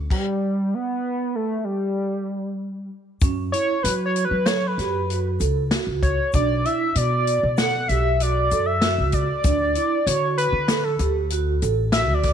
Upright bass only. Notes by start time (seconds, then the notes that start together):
3.22 F#2
3.84 F#3
4.31 F#3
4.78 F#2
5.40 C#2
5.87 C#2
6.34 B1
6.96 B2
7.43 B2
7.89 B1
8.51 F#2
8.98 C#2
9.44 D2
10.07 D3
10.52 D3
10.99 D2
11.62 A1
12.08 D2